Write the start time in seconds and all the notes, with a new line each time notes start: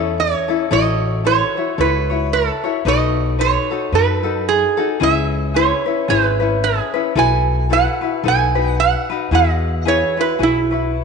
Already playing: E2 C#4 E4 A4 D#5
0.20 C#5
0.48 C#4 E4 A4
0.71 A1 E4 F#4 A4 C#5 D#5
1.25 E4 F#4 A4 C#5
1.57 E4 F#4 C#5
1.78 C#2 E4 F#4 A4 B4 C#5
2.10 E4 F#4 C#5
2.33 A4
2.64 E4 F#4 C#5
2.85 B1 D#4 F#4 A4 B4 D#5
3.39 D#4 F#4 A4 B4 C#5
3.71 D#4 F#4 A4
3.92 F#2 D#4 F#4 A4 B4
4.23 D#4 F#4 A4
4.49 G#4
4.77 D#4 F#4 A4
5.00 C#2 C#4 E4 G#4 B4 E5
5.54 C#4 E4 G#4 B4 C#5
5.86 C#4 E4 B4
6.08 G#1 C#4 E4 G#4 B4
6.40 C#4 E4 B4
6.64 G#4
6.94 C#4 E4 B4
7.16 B1 E4 F#4 A4 B4 G#5
7.70 E4 F#4 A4 B4 F#5
8.01 E4 F#4 B4
8.23 B1 D#4 F#4 A4 B4
8.28 G#5
8.55 D#4 F#4 B4
8.80 F#5
9.10 D#4 F#4 B4
9.31 E2 E4 F#4 G#4 B4 D#5
9.85 E4 F#4 G#4 B4 C#5
10.17 E4 F#4 B4
10.39 B1 E4 F#4 G#4 B4
10.43 E4
10.71 E4 F#4 B4